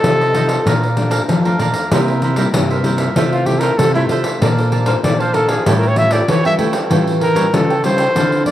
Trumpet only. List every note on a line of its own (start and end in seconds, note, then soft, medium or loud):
0.00 0.81 A4 loud
3.32 3.48 F4 medium
3.46 3.61 G4 medium
3.59 3.79 A#4 medium
3.77 3.94 A4 medium
3.95 4.04 E4 medium
5.04 5.22 D5 medium
5.20 5.36 C5 medium
5.34 5.51 A4 medium
5.49 5.68 G#4 medium
5.66 5.79 G4 medium
5.77 5.90 A#4 medium
5.88 6.00 C#5 medium
5.98 6.14 E5 loud
6.13 6.32 D5 medium
6.30 6.45 C#5 medium
6.46 6.55 E5 loud
7.23 7.56 A#4 medium
7.55 7.85 A4 medium
7.85 8.43 C5 loud
8.46 8.51 D5 loud